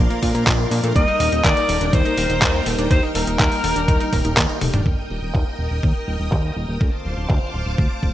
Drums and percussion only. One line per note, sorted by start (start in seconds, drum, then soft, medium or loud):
0.11 closed hi-hat soft
0.22 kick medium
0.22 open hi-hat loud
0.35 closed hi-hat soft
0.47 kick loud
0.47 clap loud
0.47 closed hi-hat medium
0.71 open hi-hat loud
0.84 closed hi-hat medium
0.96 kick loud
0.96 closed hi-hat medium
1.20 open hi-hat loud
1.32 closed hi-hat medium
1.44 kick loud
1.44 clap loud
1.44 closed hi-hat medium
1.57 closed hi-hat soft
1.69 open hi-hat loud
1.81 closed hi-hat medium
1.93 kick loud
1.93 closed hi-hat medium
2.06 closed hi-hat soft
2.18 open hi-hat loud
2.30 closed hi-hat medium
2.42 kick loud
2.42 clap loud
2.42 closed hi-hat medium
2.66 open hi-hat loud
2.79 closed hi-hat medium
2.91 kick loud
2.91 closed hi-hat medium
3.15 open hi-hat loud
3.27 closed hi-hat medium
3.39 kick loud
3.39 clap loud
3.39 closed hi-hat medium
3.52 open hi-hat medium
3.64 open hi-hat loud
3.76 closed hi-hat medium
3.88 kick loud
3.88 closed hi-hat medium
4.01 closed hi-hat soft
4.13 kick medium
4.13 open hi-hat loud
4.25 closed hi-hat medium
4.37 kick loud
4.37 clap loud
4.37 closed hi-hat medium
4.49 closed hi-hat soft
4.61 open hi-hat loud
4.61 high tom medium
4.74 closed hi-hat medium
4.74 mid tom medium
4.86 kick loud
5.35 kick loud
5.35 clap medium
5.83 kick loud
6.32 kick loud
6.32 clap loud
6.81 kick loud
7.30 kick loud
7.30 clap loud
7.78 kick loud
8.03 kick medium